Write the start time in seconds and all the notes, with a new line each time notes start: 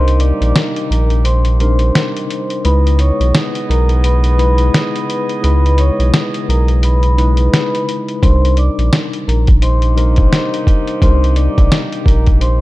Already playing: C2 C3 G3 A#3 D4 D#4 G4 A#4 C5 C6
0.08 closed hi-hat
0.20 D5 D6, closed hi-hat
0.41 A#1, closed hi-hat
0.56 snare, closed hi-hat
0.76 closed hi-hat
0.90 A#1 A#4 A#5, closed hi-hat
1.10 closed hi-hat
1.24 C5 C6, closed hi-hat
1.45 closed hi-hat
1.59 C3 G3 D4 D#4 A#4 C5 C6, closed hi-hat
1.79 closed hi-hat
1.95 snare, closed hi-hat
2.17 closed hi-hat
2.30 closed hi-hat
2.50 closed hi-hat
2.64 C#2 C#3 G#3 B3 D#4 E4 G#4 B4 D#5 B5, closed hi-hat
2.87 closed hi-hat
2.99 C#5 C#6, closed hi-hat
3.20 B1, closed hi-hat
3.35 snare, closed hi-hat
3.55 closed hi-hat
3.69 B1 A#4 A#5, closed hi-hat
3.89 closed hi-hat
4.04 B4 B5, closed hi-hat
4.24 closed hi-hat
4.37 C#3 G#3 D#4 E4 B4 B5, closed hi-hat
4.58 closed hi-hat
4.74 snare, closed hi-hat
4.96 closed hi-hat
5.10 closed hi-hat
5.29 closed hi-hat
5.41 C#2 C#3 G#3 D#4 E4 B4 B5, closed hi-hat
5.66 closed hi-hat
5.78 C#5 C#6, closed hi-hat
5.99 B1, closed hi-hat
6.14 snare, closed hi-hat
6.34 closed hi-hat
6.48 B1 A#4 A#5, closed hi-hat
6.68 closed hi-hat
6.83 B4 B5, closed hi-hat
7.03 closed hi-hat
7.16 C#3 G#3 D#4 E4 B4 B5, closed hi-hat
7.37 closed hi-hat
7.54 snare, closed hi-hat
7.75 closed hi-hat
7.89 closed hi-hat
8.08 closed hi-hat
8.21 C2 C3 G3 D4 D#4 A#4 C5 C6, kick, closed hi-hat
8.45 closed hi-hat
8.57 D5 D6, closed hi-hat
8.78 A#1, closed hi-hat
8.93 snare, closed hi-hat
9.13 closed hi-hat
9.27 A#1 A#4 A#5, closed hi-hat
9.47 kick, closed hi-hat
9.62 A#3 D#4 G4 C5 C6, closed hi-hat
9.82 closed hi-hat
9.95 C3 G3 D4 D#4 A#4 C5 C6, closed hi-hat
10.16 kick, closed hi-hat
10.33 snare, closed hi-hat
10.54 closed hi-hat
10.67 kick, closed hi-hat
10.87 closed hi-hat
11.00 C2 C3 G3 D4 D#4 A#4 C5 C6, kick, closed hi-hat
11.24 closed hi-hat
11.36 D5 D6, closed hi-hat
11.58 A#1, kick, closed hi-hat
11.72 snare, closed hi-hat
11.92 closed hi-hat
12.06 A#1 A#4 A#5, kick, closed hi-hat
12.26 kick, closed hi-hat
12.41 C5 C6, closed hi-hat